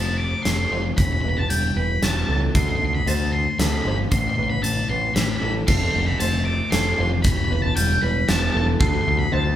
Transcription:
0.00 0.33 F1 medium
0.00 0.17 F3 medium
0.00 0.97 A3 medium
0.00 0.46 C5 medium
0.00 0.18 A5 medium
0.18 0.97 F3 medium
0.18 0.43 D6 medium
0.43 0.65 F1 medium
0.43 0.98 C4 medium
0.43 0.72 A4 medium
0.43 0.50 C6 medium
0.43 snare medium
0.43 closed hi-hat medium
0.51 0.58 C6 medium
0.58 0.64 C6 medium
0.65 0.72 C6 medium
0.71 0.91 F1 medium
0.71 0.98 F4 medium
0.71 1.24 C5 medium
0.71 0.81 C6 medium
0.97 1.18 E1 medium
0.97 1.22 E3 medium
0.97 1.05 B5 medium
0.97 kick medium
0.97 closed hi-hat medium
1.05 1.12 B5 medium
1.13 1.21 B5 medium
1.21 1.44 E1 medium
1.21 1.75 E3 medium
1.21 1.75 B4 medium
1.21 1.29 B5 medium
1.29 1.38 B5 medium
1.37 1.50 A5 medium
1.49 1.70 E1 medium
1.49 2.55 G3 medium
1.49 1.77 G5 medium
1.49 closed hi-hat medium
1.76 1.96 E1 medium
1.76 2.54 E3 medium
1.76 2.29 B4 medium
1.76 2.03 B5 medium
2.02 2.22 E1 medium
2.02 2.55 B3 medium
2.02 2.10 A5 medium
2.02 snare medium
2.02 closed hi-hat medium
2.10 2.17 A5 medium
2.17 2.24 A5 medium
2.25 2.49 C#2 medium
2.25 2.55 E4 medium
2.25 2.53 A4 medium
2.25 2.32 A5 medium
2.32 2.40 A5 medium
2.55 2.75 D2 medium
2.55 2.79 D3 medium
2.55 3.07 A4 medium
2.55 2.61 C6 medium
2.55 kick medium
2.55 closed hi-hat medium
2.62 2.69 C6 medium
2.69 2.76 C6 medium
2.76 2.84 C6 medium
2.81 3.01 D2 medium
2.81 3.32 D3 medium
2.85 2.93 C6 medium
2.95 3.08 B5 medium
3.06 3.46 D2 medium
3.06 4.64 A3 medium
3.06 3.60 C5 medium
3.06 3.32 A5 medium
3.06 closed hi-hat medium
3.33 4.12 D3 medium
3.33 3.57 C6 medium
3.59 3.79 D2 medium
3.59 5.16 C4 medium
3.59 3.86 A4 medium
3.59 3.66 B5 medium
3.59 snare medium
3.59 closed hi-hat medium
3.67 3.74 B5 medium
3.74 3.81 B5 medium
3.82 4.05 G1 medium
3.82 4.12 F4 medium
3.82 4.38 C5 medium
3.82 3.88 B5 medium
3.88 3.96 B5 medium
4.11 4.32 A1 medium
4.11 5.43 A2 medium
4.11 4.18 C6 loud
4.11 kick loud
4.11 closed hi-hat medium
4.19 4.27 C6 medium
4.29 4.35 C6 medium
4.35 4.58 A1 medium
4.35 4.89 E3 medium
4.35 4.88 B4 medium
4.35 4.43 C6 medium
4.44 4.49 C6 medium
4.50 4.62 B5 medium
4.63 4.83 A1 medium
4.63 5.68 A3 medium
4.63 4.89 A5 medium
4.63 closed hi-hat medium
4.89 5.09 A1 medium
4.89 5.67 E3 medium
4.89 5.42 B4 medium
4.89 5.14 C6 medium
5.15 5.36 A1 medium
5.15 5.68 C4 medium
5.15 5.21 B5 medium
5.15 snare medium
5.15 closed hi-hat medium
5.22 5.29 B5 medium
5.29 5.36 B5 medium
5.36 5.44 B5 medium
5.41 5.62 A1 medium
5.41 5.68 E4 medium
5.41 5.67 A4 medium
5.41 5.52 B5 medium
5.67 5.88 F1 medium
5.67 5.92 F3 medium
5.67 6.20 A4 medium
5.67 5.75 C6 medium
5.67 kick loud
5.67 crash medium
5.75 5.84 C6 medium
5.84 5.91 C6 medium
5.91 6.14 F1 medium
5.91 6.44 F3 medium
5.91 5.99 C6 medium
6.00 6.06 C6 medium
6.07 6.19 B5 medium
6.20 6.60 F1 medium
6.20 7.24 A3 medium
6.20 6.72 C5 medium
6.20 6.44 A5 medium
6.20 closed hi-hat medium
6.45 7.24 F3 medium
6.45 6.71 D6 medium
6.71 6.92 F1 medium
6.71 7.24 C4 medium
6.71 6.98 A4 medium
6.71 6.78 C6 medium
6.71 snare medium
6.71 closed hi-hat medium
6.79 6.85 C6 medium
6.86 6.93 C6 medium
6.94 7.50 C5 medium
6.94 7.01 C6 medium
6.98 7.25 F1 medium
6.98 7.24 F4 medium
6.98 7.08 C6 medium
7.22 7.44 E1 medium
7.22 7.49 E3 medium
7.22 7.30 B5 medium
7.22 kick loud
7.22 closed hi-hat medium
7.30 7.37 B5 medium
7.37 7.44 B5 medium
7.44 7.52 B5 medium
7.50 7.70 E1 medium
7.50 8.01 E3 medium
7.50 8.01 B4 medium
7.50 7.60 B5 medium
7.62 7.75 A5 medium
7.76 7.96 E1 medium
7.76 8.81 G3 medium
7.76 8.03 G5 medium
7.76 closed hi-hat medium
8.01 8.22 E1 medium
8.01 8.80 E3 medium
8.01 8.54 B4 medium
8.01 8.29 B5 medium
8.28 8.48 E1 medium
8.28 8.81 B3 medium
8.28 8.34 A5 medium
8.28 snare medium
8.28 closed hi-hat medium
8.35 8.42 A5 medium
8.42 8.50 A5 medium
8.50 8.57 A5 medium
8.54 8.74 E1 medium
8.54 8.80 E4 medium
8.54 8.79 A4 medium
8.54 8.64 A5 medium
8.80 9.00 D2 loud
8.80 9.06 D3 medium
8.80 9.32 A4 medium
8.80 8.87 C6 medium
8.80 kick loud
8.87 8.94 C6 medium
8.94 9.01 C6 medium
9.02 9.08 C6 medium
9.07 9.26 D2 medium
9.07 9.56 D3 medium
9.07 9.16 C6 medium
9.19 9.32 B5 medium
9.32 9.56 D2 loud
9.32 9.56 A3 medium
9.32 9.56 C5 medium
9.32 9.56 A5 medium

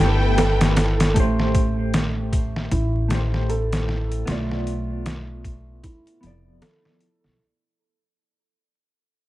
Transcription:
0.00 1.13 G1 medium
0.00 0.76 A3 medium
0.00 0.77 B3 medium
0.00 0.34 E4 medium
0.00 0.79 G4 loud
0.00 1.15 A4 medium
0.00 1.15 B4 medium
0.00 1.15 G5 medium
0.38 1.12 A4 loud
0.38 snare loud
0.38 closed hi-hat medium
0.61 snare loud
0.61 closed hi-hat medium
0.77 snare loud
0.77 closed hi-hat medium
1.00 snare loud
1.00 closed hi-hat medium
1.14 2.69 A1 loud
1.14 3.06 A3 medium
1.14 2.68 A3 medium
1.14 3.07 G4 medium
1.14 kick loud
1.14 closed hi-hat medium
1.20 3.09 C5 medium
1.39 snare soft
1.55 kick medium
1.55 closed hi-hat medium
1.94 snare loud
1.94 closed hi-hat medium
2.33 kick medium
2.33 closed hi-hat medium
2.56 snare soft
2.71 4.25 A1 loud
2.71 3.46 E4 medium
2.71 kick loud
2.71 closed hi-hat medium
3.08 4.22 A3 medium
3.08 4.24 G4 medium
3.08 snare medium
3.08 closed hi-hat medium
3.14 4.26 C5 medium
3.34 snare soft
3.49 4.24 A4 loud
3.49 closed hi-hat medium
3.73 snare medium
3.73 closed hi-hat medium
3.89 snare soft
4.12 closed hi-hat medium
4.26 5.81 B1 loud
4.26 5.80 A3 medium
4.26 6.17 B3 medium
4.26 6.19 F4 medium
4.26 snare loud
4.26 closed hi-hat medium
4.32 6.21 D5 medium
4.51 snare soft
4.67 closed hi-hat medium
5.06 snare loud
5.06 closed hi-hat medium
5.45 kick medium
5.45 closed hi-hat medium
5.83 6.58 E4 medium
5.83 kick medium
5.83 closed hi-hat medium
6.07 closed hi-hat soft
6.21 6.58 F1 medium
6.21 7.36 F3 medium
6.21 7.34 B3 medium
6.21 closed hi-hat medium
6.27 7.37 D5 medium
6.62 7.36 A4 medium
6.62 snare loud
6.62 closed hi-hat medium
6.85 snare soft
7.01 closed hi-hat medium
7.24 7.38 B1 medium
7.24 snare soft

